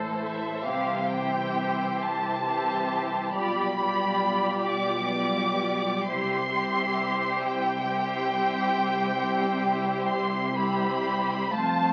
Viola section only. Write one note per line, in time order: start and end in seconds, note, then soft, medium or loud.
0.00 0.64 E3 soft
0.00 0.64 E4 soft
0.65 1.09 E3 soft
0.65 1.09 E4 soft
1.10 2.42 E3 soft
1.10 2.42 E4 soft
2.44 3.32 E3 soft
2.44 3.32 E4 soft
3.34 3.78 G3 soft
3.34 3.78 F4 soft
3.79 5.14 G3 soft
3.79 5.14 F4 medium
5.17 6.06 G3 soft
5.17 6.07 F4 soft
6.09 6.53 G3 soft
6.09 6.53 E4 soft
6.54 7.84 G3 medium
6.54 7.84 E4 soft
7.86 9.16 G3 soft
7.86 9.15 E4 soft
9.18 10.52 G3 medium
9.18 10.53 E4 medium
10.54 11.51 G3 medium
10.54 11.51 E4 medium
11.53 11.93 A3 medium
11.53 11.93 C4 medium